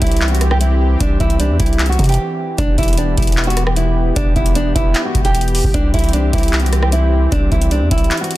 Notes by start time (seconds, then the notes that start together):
Already playing: E3 C4 G4
0.02 C2 E4, kick, closed hi-hat
0.07 closed hi-hat
0.12 closed hi-hat
0.17 closed hi-hat
0.21 clap, closed hi-hat
0.28 F#4, closed hi-hat
0.35 closed hi-hat
0.41 cross-stick, closed hi-hat
0.51 G4, cross-stick
0.61 E4, closed hi-hat
1.00 C2 D4, kick, closed hi-hat
1.20 C2 E4, kick, closed hi-hat
1.30 closed hi-hat
1.40 D4, closed hi-hat
1.50 E2
1.60 C2 E4, kick, closed hi-hat
1.66 closed hi-hat
1.73 closed hi-hat
1.79 clap, closed hi-hat
1.86 F#4, closed hi-hat
1.93 closed hi-hat
1.99 C3, kick, closed hi-hat
2.04 closed hi-hat
2.06 G4, closed hi-hat
2.09 closed hi-hat
2.12 closed hi-hat
2.14 closed hi-hat
2.58 E1 B3 D4 G4, kick, closed hi-hat
2.78 E1 E4, kick, closed hi-hat
2.83 closed hi-hat
2.88 closed hi-hat
2.93 closed hi-hat
2.98 D4, closed hi-hat
3.18 E1 E4, kick, closed hi-hat
3.22 closed hi-hat
3.27 closed hi-hat
3.32 closed hi-hat
3.37 clap, closed hi-hat
3.44 F#4, closed hi-hat
3.50 closed hi-hat
3.57 cross-stick, closed hi-hat
3.67 G4, cross-stick
3.76 E4, closed hi-hat
4.16 E1 D4, kick, closed hi-hat
4.36 E1 E4, kick, closed hi-hat
4.46 closed hi-hat
4.55 D4, closed hi-hat
4.75 E1 E4, kick, closed hi-hat
4.95 clap, closed hi-hat
5.05 F#4
5.15 E1, kick, closed hi-hat
5.25 G4, closed hi-hat
5.35 closed hi-hat
5.41 closed hi-hat
5.48 closed hi-hat
5.55 open hi-hat
5.64 E1, kick
5.74 C2 E3 C4 D4, kick, closed hi-hat
5.94 C2 E4, kick, closed hi-hat
5.99 closed hi-hat
6.04 closed hi-hat
6.09 closed hi-hat
6.13 D4, closed hi-hat
6.33 C2 E4, kick, closed hi-hat
6.38 closed hi-hat
6.43 closed hi-hat
6.48 closed hi-hat
6.53 clap, closed hi-hat
6.60 F#4, closed hi-hat
6.66 closed hi-hat
6.73 cross-stick, closed hi-hat
6.83 G4, cross-stick
6.92 E4, closed hi-hat
7.32 C2 D4, kick, closed hi-hat
7.52 C2 E4, kick, closed hi-hat
7.62 closed hi-hat
7.71 D4, closed hi-hat
7.81 E2
7.91 C2 E4, kick, closed hi-hat
7.98 closed hi-hat
8.04 closed hi-hat
8.11 clap, closed hi-hat
8.18 F#4, closed hi-hat
8.24 closed hi-hat
8.31 closed hi-hat